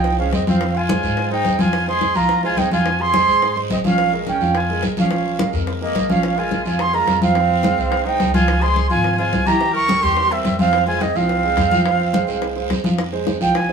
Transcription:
Already playing: C2 F3 D#4 F4 F5 G5
0.04 high bongo, high conga, long guiro
0.19 G#3 C#4 G#4 C5 F5, high bongo, high conga
0.33 F2 C4 D#5, high bongo, low bongo, high conga, short guiro
0.47 F3 C4 F4 F5, high conga, short guiro
0.61 F3 F4 F5, high bongo, long guiro
0.75 F4 G#5, high conga
0.89 G#3 G#4 C5, high bongo, high conga, short guiro
1.03 G#2 G#3 G#4 C5, high bongo, high conga, short guiro
1.17 high bongo, high conga, long guiro
1.30 G#3 D#4 G#4 C5 G5, high bongo, high conga
1.45 F2, high bongo, low bongo, high conga, short guiro
1.59 F3 F4 F5 G#5, high bongo, high conga, short guiro
1.73 high bongo, high conga, long guiro
1.87 G#3 G#4 C5 C6, high bongo, high conga
2.01 high bongo, high conga, short guiro
2.15 C2 F3 F4 F5 A#5, high bongo, high conga, short guiro
2.29 high bongo, high conga, long guiro
2.43 G#3 F4 G#4 C5 G#5, high bongo, high conga
2.57 F2 D#4 G5, high bongo, low bongo, high conga, short guiro
2.71 F3 F4 F5 G#5, high conga, short guiro
2.85 F3 F4 F5, high bongo, high conga
3.00 G#4 C6, high conga
3.14 G#3 G#4 C5, high bongo, high conga, short guiro
3.28 G#2 G#3 G#4 C5, high bongo, high conga, short guiro
3.42 high bongo, high conga, long guiro
3.56 G#3 G#4 C5, high bongo, high conga
3.70 A#1 C4 D#5, high bongo, low bongo, high conga, short guiro
3.84 F3 C#4 F4 F5, high bongo, high conga, short guiro
3.98 high bongo, high conga, long guiro
4.12 G#3 G#4 A#4, high bongo, high conga
4.27 C#4 G5, high bongo, high conga, short guiro
4.41 F2 F3 F4 F5, high bongo, high conga, short guiro
4.55 F4 G#5, high bongo, high conga, long guiro
4.69 G#3 G#4 A#4, high bongo, high conga
4.83 A#1, high bongo, low bongo, high conga, short guiro
4.97 F3 C#4 F4 F5, high conga, short guiro
5.11 F3 F4 F5, high bongo, high conga, long guiro
5.25 high conga
5.39 G#3 G#4 A#4, high bongo, high conga, short guiro
5.53 F2 G#3 G#4 A#4, high bongo, high conga, short guiro
5.67 high bongo, high conga, long guiro
5.81 G#3 A#3 G#4 A#4 D#5, high bongo, high conga
5.95 A#1, high bongo, low bongo, high conga, short guiro
6.09 F3 C#4 F4 F5, high bongo, high conga, short guiro
6.23 high bongo, high conga, long guiro
6.36 G#3 F4 G#4 A#4 G#5, high bongo, high conga
6.51 high bongo, high conga, short guiro
6.65 F2 F3 F4 F5 G#5, high bongo, high conga, short guiro
6.79 G#4 C6, high bongo, high conga, long guiro
6.93 G#3 F4 G#4 A#4 A#5, high bongo, high conga
7.07 F2, high bongo, low bongo, high conga, short guiro
7.21 F3 C4 F4 F5, high conga, short guiro
7.35 F3 F4 F5, high bongo, high conga, long guiro
7.50 high conga
7.63 G#3 G#4 C5, high bongo, high conga, short guiro
7.78 C2 G#3 G#4 C5, high bongo, high conga, short guiro
7.92 high bongo, high conga, long guiro
8.05 G#3 D#4 G#4 C5 G5, high bongo, high conga
8.20 C#2, high bongo, low bongo, high conga, short guiro
8.34 F3 F4 F5 G#5, high bongo, high conga, short guiro
8.48 high bongo, high conga, long guiro
8.61 G#3 G#4 C5 C6, high bongo, high conga
8.76 high bongo, high conga, short guiro
8.89 G#1 F3 F4 F5 G#5, high bongo, high conga, short guiro
9.04 high bongo, high conga, long guiro
9.17 G#3 F4 G#4 C5 G#5, high bongo, high conga
9.32 C2, high bongo, low bongo, high conga, short guiro
9.46 E3 E4 G4 E5 A#5, high conga, short guiro
9.61 E3 E4 E5, high bongo, high conga, long guiro
9.73 A#4 C#6, high conga
9.89 G3 G4 A#4, high bongo, high conga, short guiro
10.02 E2 G3 G4 A#4 C6, high bongo, high conga, short guiro
10.17 high bongo, high conga, long guiro
10.29 G3 C4 G4 A#4 E5, high bongo, high conga
10.44 F2, high bongo, low bongo, high conga, short guiro
10.58 F3 C4 F4 F5, high bongo, high conga, short guiro
10.73 high bongo, high conga, long guiro
10.87 G#3 F4 G#4 C5 G#5, high bongo, high conga
11.00 C4 D#5, high bongo, high conga, short guiro
11.15 C2 F3 C4 F4 F5, high bongo, high conga, short guiro
11.29 high bongo, high conga, long guiro
11.43 G#3 G#4 C5, high bongo, high conga
11.57 F2, high bongo, low bongo, high conga, short guiro
11.71 F3 F4 F5, high conga, short guiro
11.85 F3 F4 F5, high bongo, high conga, long guiro
12.00 high conga
12.13 G#3 G#4 C5, high bongo, high conga, short guiro
12.27 C2 G#3 G#4 C5, high bongo, high conga, short guiro
12.42 high bongo, high conga, long guiro
12.56 G#3 G#4 C5, high bongo, high conga
12.70 F2, high bongo, low bongo, high conga, short guiro
12.84 F3 F4 F5, high bongo, high conga, short guiro
12.98 high bongo, high conga, long guiro
13.12 G#3 G#4 C5, high bongo, high conga
13.27 high bongo, high conga, short guiro
13.40 C2 F3 F4 F5 G5, high bongo, high conga, short guiro
13.55 G#5, high bongo, high conga, long guiro
13.69 G#3 G#4 C5, high bongo, high conga

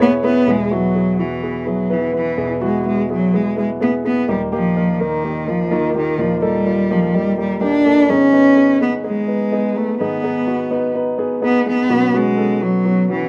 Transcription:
Already playing: E2 B2 B4
0.00 B3 E4 G#4 C#5
0.23 B3 E4 G#4 B4
0.47 E2 B2 G#3 B3 E4 G#4
0.71 F#3 B3 E4 F#4
0.94 B3 E4 G#4
1.19 E3 B3 E4 F#4
1.43 B3 E4 G#4
1.66 F#3 B3 E4 G#4
1.90 E3 B3 E4 B4
2.13 E3 B3 E4 B4
2.37 E2 B2 B3 E4 G#4
2.61 G#3 B3 E4 F#4
2.85 G#3 B3 E4 B4
3.10 F#3 B3 E4 G#4
3.33 G#3 B3 E4 G#4
3.56 G#3 B3 E4 G#4
3.80 B3 E4 G#4
4.04 B3 E4 G#4
4.28 D#2 A#2 G3 A#3 D#4 G4
4.52 F3 A#3 D#4 G4
4.76 A#3 D#4 A#4
4.94 F3
5.00 D#3 A#3 D#4 A#4
5.24 A#3 D#4 G4
5.47 F3 A#3 D#4 F4
5.70 D#3 A#3 D#4 F4
5.95 D#3 A#3 D#4 G4
6.18 D#2 A#2 F3 A#3 D#4 F4
6.42 G3 A#3 D#4 A4
6.66 A#3 D#4 F4
6.90 F3 A#3 D#4 G4
7.14 G3 A#3 D#4 G4
7.38 G3 A#3 D#4 G4
7.61 A#3 D4 D#4 G4
7.85 A#3 D#4 A4
8.09 G#2 D#3 B3 C#4 D#4 G#4
8.32 B3 D#4 B4
8.56 B3 D#4 G#4
8.80 B3 D#4 G#4
9.04 G#3 B3 D#4 G#4
9.27 B3 D#4 B4
9.52 B3 D#4 G#4
9.76 A3 B3 D#4 B4
10.00 G#2 D#3 B3 D#4 G#4
10.23 B3 D#4 G#4
10.47 B3 D#4 F#4
10.71 B3 D#4 B4
10.95 B3 D#4 B4
11.18 B3 D#4 G#4
11.42 B3 D#4 G#4
11.66 B3 D#4 G#4
11.89 B2 F#3 B3 C#4 F#4
12.14 G#3 B3 C#4 F#4
12.37 B3 C#4 A4
12.61 F#3 B3 C#4 F#4
12.85 B3 C#4 F#4
13.09 E3 B3 C#4 F#4

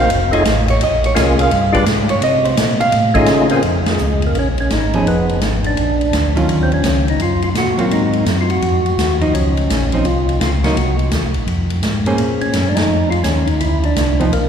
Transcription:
Already playing: F#4 C5
0.00 F5
0.10 F1, ride
0.31 A3 D#4 F4 G#4 C#5 D#5, ride
0.45 A1, snare, hi-hat pedal, ride
0.68 C#5, ride
0.81 A#1 D#5, ride
1.04 C#5, ride
1.15 C2 A#3 C#4 F4 G#4, snare, hi-hat pedal, ride
1.39 F5, ride
1.51 G2, ride
1.72 G#3 D4 F4 G4 B4 D5, kick, ride
1.86 G#2, snare, hi-hat pedal, ride
2.09 G#2 C#5, ride
2.21 C3 D#5, ride
2.45 C5, ride
2.57 A#2, snare, hi-hat pedal, ride
2.80 F5, ride
2.92 A2, ride
3.14 A3 C#4 D#4 F4 G#4 D#5, kick, ride
3.26 C#3, snare, hi-hat pedal, ride
3.49 A#3 C4 C#4 F4 G#4, ride
3.62 F2, ride
3.86 snare, ride
3.91 G#3
3.98 C#2, hi-hat pedal
4.22 ride
4.27 A#3
4.34 A#1, ride
4.39 C#4
4.58 C#4, ride
4.69 G#1 D#4, snare, hi-hat pedal, ride
4.93 F3 B3 C#4 D#4 G#4, ride
5.05 F1 B3, ride
5.29 ride
5.41 G#1, snare, hi-hat pedal, ride
5.64 D4, ride
5.77 A#1, ride
6.01 ride
6.12 D2, snare, hi-hat pedal, ride
6.35 D#3 F#3 C#4 F4, ride
6.48 D#2, ride
6.63 C4
6.72 C#4, ride
6.83 C#2, snare, hi-hat pedal, ride
7.08 D#4, ride
7.19 F#2 F4, ride
7.42 F4, ride
7.54 A#2 F#4, snare, hi-hat pedal, ride
7.77 F#3 A#3 C4 F4, ride
7.91 G#2 D#4, ride
8.13 ride
8.26 F#2, snare, hi-hat pedal, ride
8.41 F4
8.50 F#4, ride
8.62 F2, ride
8.86 ride
8.97 D#2, snare, hi-hat pedal, ride
9.21 F3 D#4, ride
9.33 C#2 C#4, ride
9.57 ride
9.70 A#1, snare, hi-hat pedal, ride
9.92 F3 C4 D#4, ride
10.05 C2 F4, ride
10.29 ride
10.40 C#2 F4, snare, hi-hat pedal, ride
10.64 F#3 A#3 D#4 F#4, snare, ride
10.76 C2, ride
10.99 ride
11.11 D#2, snare, hi-hat pedal, ride
11.23 C2
11.34 A#1, ride
11.47 F2, ride
11.70 ride
11.82 G#2, snare, hi-hat pedal, ride
12.06 A#3 C#4 G#4 C5, ride
12.18 A#2, ride
12.41 C#4, ride
12.53 F#2, snare, hi-hat pedal, ride
12.69 D4
12.75 D#4, snare, ride
12.88 F2
13.11 F4, ride
13.24 D#2 C#4, snare, hi-hat pedal, ride
13.46 D#4, ride
13.60 D2 E4, ride
13.83 D4, ride
13.96 C2, snare, hi-hat pedal, ride
14.20 F3 B3 C4 D#4, ride
14.32 B1 A#3, ride

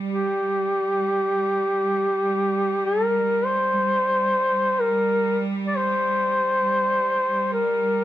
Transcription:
Already playing: G3
0.12 G4
2.86 A#4
3.45 C5
4.80 A#4
5.68 D5
5.77 C5
7.53 A#4

